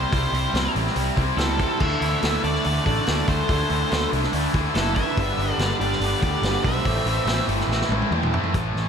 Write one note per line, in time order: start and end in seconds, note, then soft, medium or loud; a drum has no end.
0.00 0.11 C3 medium
0.00 0.10 G3 medium
0.00 0.11 C4 medium
0.00 0.13 E4 medium
0.00 0.72 C5 medium
0.10 0.25 C2 loud
0.10 0.51 C3 medium
0.10 0.34 G3 medium
0.10 0.33 C4 medium
0.10 0.31 E4 loud
0.10 kick loud
0.10 open hi-hat medium
0.32 0.46 C2 medium
0.32 0.53 C3 medium
0.32 0.52 G3 medium
0.32 0.54 C4 medium
0.32 0.55 E4 medium
0.32 open hi-hat medium
0.52 0.67 C2 loud
0.52 0.75 C3 medium
0.52 0.74 G3 medium
0.52 0.73 C4 medium
0.52 0.73 E4 medium
0.52 snare loud
0.52 open hi-hat medium
0.73 0.88 A1 loud
0.73 0.94 C3 medium
0.73 0.95 G3 medium
0.73 0.97 C4 medium
0.73 0.98 E4 medium
0.73 open hi-hat medium
0.87 snare soft
0.95 1.09 C2 medium
0.95 1.36 C3 medium
0.95 1.18 G3 medium
0.95 1.16 C4 medium
0.95 1.15 E4 medium
0.95 open hi-hat medium
1.16 1.30 C2 medium
1.16 1.36 C3 loud
1.16 1.36 G3 medium
1.16 1.38 C4 medium
1.16 1.40 E4 medium
1.16 kick medium
1.16 open hi-hat medium
1.37 1.64 C#2 medium
1.37 1.78 C3 loud
1.37 1.60 G3 medium
1.37 1.58 C4 loud
1.37 1.77 E4 medium
1.37 1.57 E4 loud
1.37 1.82 A4 medium
1.37 snare loud
1.37 open hi-hat medium
1.57 1.79 C3 medium
1.57 1.79 G3 medium
1.57 1.79 C4 medium
1.57 1.81 E4 medium
1.57 kick loud
1.57 open hi-hat medium
1.78 1.94 D2 medium
1.78 2.21 D3 medium
1.78 2.03 E3 medium
1.78 2.01 A3 loud
1.78 2.03 D4 loud
1.78 1.99 E4 medium
1.78 2.40 A4 loud
1.78 2.44 E5 loud
1.78 kick loud
1.78 crash loud
2.00 2.14 D2 medium
2.00 2.22 D3 medium
2.00 2.22 E3 medium
2.00 2.23 A3 medium
2.00 2.23 D4 loud
2.00 2.24 E4 medium
2.00 open hi-hat medium
2.21 2.36 D2 loud
2.21 2.45 D3 medium
2.21 2.45 E3 medium
2.21 2.43 A3 medium
2.21 2.45 D4 loud
2.21 2.42 E4 medium
2.21 snare loud
2.21 open hi-hat medium
2.42 2.57 D2 medium
2.42 2.63 D3 medium
2.42 2.64 E3 medium
2.42 2.65 A3 medium
2.42 2.66 D4 loud
2.42 2.66 E4 loud
2.42 2.83 A4 medium
2.42 2.83 D5 loud
2.42 open hi-hat medium
2.55 snare soft
2.64 2.78 D2 medium
2.64 3.05 D3 medium
2.64 2.88 E3 medium
2.64 2.86 A3 medium
2.64 2.86 D4 medium
2.64 2.84 E4 medium
2.64 open hi-hat medium
2.85 2.99 A1 medium
2.85 3.05 D3 medium
2.85 3.06 E3 medium
2.85 3.07 A3 medium
2.85 3.07 D4 loud
2.85 3.08 E4 medium
2.85 3.25 A4 medium
2.85 3.25 D5 loud
2.85 kick medium
2.85 open hi-hat medium
3.06 3.21 D2 medium
3.06 3.48 D3 medium
3.06 3.30 E3 loud
3.06 3.29 A3 loud
3.06 3.28 D4 medium
3.06 3.27 E4 loud
3.06 snare loud
3.06 open hi-hat medium
3.27 3.41 D2 medium
3.27 3.48 D3 medium
3.27 3.51 A3 medium
3.27 3.50 D4 loud
3.27 3.52 E4 medium
3.27 4.08 A4 medium
3.27 4.09 C5 medium
3.27 kick loud
3.27 open hi-hat medium
3.31 3.50 E3 medium
3.48 3.62 D2 medium
3.48 3.91 D3 medium
3.48 3.72 E3 loud
3.48 3.71 A3 loud
3.48 3.70 D4 loud
3.48 kick loud
3.48 open hi-hat medium
3.53 3.69 E4 medium
3.69 3.83 D2 medium
3.69 3.89 D3 medium
3.69 3.93 A3 medium
3.69 3.90 D4 loud
3.69 3.94 E4 medium
3.69 open hi-hat medium
3.73 3.92 E3 medium
3.91 4.05 D2 loud
3.91 4.15 D3 medium
3.91 4.14 E3 medium
3.91 4.13 A3 medium
3.91 4.13 D4 loud
3.91 snare loud
3.91 open hi-hat medium
3.95 4.11 E4 medium
4.12 4.26 C2 medium
4.12 4.33 D3 medium
4.12 4.34 E3 medium
4.12 4.35 A3 medium
4.12 4.33 D4 loud
4.12 4.36 E4 medium
4.12 open hi-hat medium
4.24 snare soft
4.33 4.46 D2 medium
4.33 4.75 D3 medium
4.33 4.58 E3 medium
4.33 4.56 A3 medium
4.33 4.54 D4 medium
4.33 open hi-hat medium
4.38 4.54 E4 loud
4.53 4.67 D2 medium
4.53 4.74 D3 loud
4.53 4.77 A3 medium
4.53 4.75 D4 loud
4.53 4.78 E4 medium
4.53 kick medium
4.53 open hi-hat medium
4.59 4.76 E3 medium
4.74 5.01 F#1 loud
4.74 5.17 D3 medium
4.74 4.99 E3 loud
4.74 4.98 A3 loud
4.74 4.96 D4 medium
4.74 4.95 E4 medium
4.74 4.94 A4 loud
4.74 snare loud
4.74 open hi-hat medium
4.79 4.95 E4 loud
4.95 5.16 D3 medium
4.95 5.17 D4 medium
4.95 5.16 E4 medium
4.95 5.54 B4 loud
4.95 5.54 E5 loud
4.95 kick loud
4.95 open hi-hat medium
4.99 5.18 E3 medium
4.99 5.17 A3 medium
5.17 5.30 G1 loud
5.17 5.60 G2 medium
5.17 5.58 D3 medium
5.17 5.41 G3 medium
5.17 5.39 B3 loud
5.17 kick loud
5.17 open hi-hat medium
5.21 5.37 D4 loud
5.37 5.51 G1 medium
5.37 5.58 G2 medium
5.37 5.60 D3 loud
5.37 5.61 B3 medium
5.37 5.62 D4 medium
5.37 open hi-hat medium
5.42 5.60 G3 medium
5.54 5.76 A4 loud
5.54 5.76 D5 loud
5.58 5.72 G1 loud
5.58 5.80 G2 loud
5.58 5.82 D3 medium
5.58 5.82 G3 medium
5.58 snare loud
5.58 open hi-hat medium
5.62 5.81 B3 medium
5.62 5.80 D4 medium
5.79 5.93 G1 medium
5.79 6.03 G3 medium
5.79 6.03 B3 medium
5.79 6.05 D4 loud
5.79 6.20 G4 medium
5.79 6.19 D5 loud
5.79 open hi-hat medium
5.83 6.25 G2 medium
5.83 6.01 D3 medium
5.92 snare soft
6.00 6.14 G1 medium
6.00 6.21 G2 loud
6.00 6.44 D3 medium
6.00 6.26 G3 medium
6.00 open hi-hat medium
6.05 6.24 B3 medium
6.05 6.22 D4 medium
6.22 6.35 D2 medium
6.22 6.43 G2 medium
6.22 6.44 D3 loud
6.22 6.45 B3 medium
6.22 6.46 D4 medium
6.22 6.62 G4 medium
6.22 6.64 D5 loud
6.22 kick medium
6.22 open hi-hat medium
6.26 6.46 G3 medium
6.42 6.56 G1 loud
6.42 6.84 G2 loud
6.42 6.85 D3 medium
6.42 snare loud
6.42 open hi-hat medium
6.46 6.67 G3 loud
6.46 6.65 B3 loud
6.46 6.63 D4 loud
6.64 6.78 B1 medium
6.64 6.84 G2 medium
6.64 6.84 D3 medium
6.64 6.87 G3 medium
6.64 6.85 B3 medium
6.64 6.84 D4 medium
6.64 7.46 C5 medium
6.64 7.45 E5 medium
6.64 kick medium
6.64 open hi-hat medium
6.85 6.98 A1 medium
6.85 7.28 A2 medium
6.85 7.26 E3 medium
6.85 7.08 A3 medium
6.85 7.07 C4 loud
6.85 kick loud
6.85 open hi-hat medium
6.89 7.05 E4 loud
7.04 7.18 A1 medium
7.04 7.26 A2 loud
7.04 7.27 E3 medium
7.04 7.28 C4 medium
7.04 7.29 E4 medium
7.04 open hi-hat medium
7.09 7.27 A3 medium
7.25 7.39 A1 loud
7.25 7.47 A2 loud
7.25 7.50 E3 medium
7.25 7.49 A3 medium
7.25 snare loud
7.25 open hi-hat loud
7.29 7.48 C4 medium
7.29 7.47 E4 medium
7.48 7.61 G1 medium
7.48 7.93 A2 medium
7.48 7.68 E3 medium
7.48 7.70 A3 medium
7.48 7.70 C4 medium
7.48 7.71 E4 loud
7.48 open hi-hat medium
7.60 snare soft
7.67 7.81 A1 medium
7.67 7.89 A2 medium
7.67 8.11 E3 medium
7.67 7.93 A3 medium
7.71 7.91 C4 medium
7.71 7.89 E4 medium
7.71 snare medium
7.82 snare medium
7.89 8.03 A1 medium
7.89 8.10 A2 loud
7.89 8.11 E3 loud
7.89 8.13 C4 medium
7.89 8.14 E4 medium
7.89 high tom medium
7.94 8.13 A3 medium
8.02 high tom medium
8.11 8.38 E2 loud
8.11 8.53 A2 loud
8.11 8.53 E3 medium
8.11 8.35 A3 medium
8.11 8.34 C4 loud
8.11 mid tom medium
8.15 8.32 E4 loud
8.23 mid tom medium
8.32 8.53 A2 medium
8.32 8.53 E3 loud
8.32 8.54 C4 medium
8.32 8.53 E4 medium
8.32 floor tom loud
8.37 8.55 A3 medium
8.44 floor tom medium
8.54 8.74 A1 medium
8.54 8.89 A2 medium
8.54 8.89 E3 medium
8.54 8.89 A3 medium
8.54 kick loud
8.54 closed hi-hat medium
8.75 8.89 A1 medium
8.75 snare soft